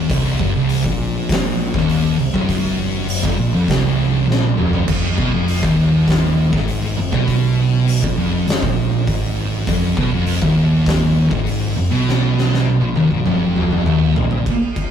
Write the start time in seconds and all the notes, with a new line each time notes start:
0.09 C1 C2, kick, open hi-hat
0.39 F#1 F#2, kick
0.55 C1 C2
0.69 open hi-hat
0.84 A#1 A#2, kick
1.29 kick, snare, open hi-hat
1.74 D#1 D#2, kick, snare
1.89 open hi-hat
2.19 C1 C2
2.34 F#1 F#2, kick
2.49 kick, open hi-hat
3.09 open hi-hat
3.24 F1 F2, kick
3.38 A#1 A#2
3.53 F1 F2
3.68 C1 C2, kick, snare, open hi-hat
4.28 A#1 A#2, snare
4.43 high tom
4.58 F1 F2, mid tom
4.73 floor tom
4.88 F1 F2, kick, crash
5.18 B1 B2, kick
5.33 F1 F2
5.48 open hi-hat
5.62 D#1 D#2, kick
6.08 kick, snare, open hi-hat
6.52 G#1 G#2, kick, snare
6.68 open hi-hat
6.98 F1 F2
7.12 B1 B2, kick
7.28 kick, open hi-hat
7.88 open hi-hat
8.02 A#1 A#2, kick
8.17 F1 F2
8.48 F1 F2, snare, open hi-hat
8.62 A#1 A#2, kick
9.07 G#1 G#2, kick, open hi-hat
9.67 F1 F2, kick, open hi-hat
9.97 B1 B2, kick
10.12 F1 F2
10.27 open hi-hat
10.42 D#1 D#2, kick
10.86 kick, snare, open hi-hat
11.31 G#1 G#2, kick
11.46 open hi-hat
11.76 F1 F2
11.91 B1 B2
12.09 snare
12.39 snare
12.54 snare
12.66 high tom
12.81 A#1 A#2
12.95 D#1 D#2, high tom
13.10 A#1 A#2, mid tom
13.26 F1 F2, mid tom
13.56 mid tom
13.71 mid tom
13.85 D#1 D#2, mid tom
14.16 A#1 A#2, floor tom
14.31 floor tom
14.46 kick, crash
14.76 C1, kick, crash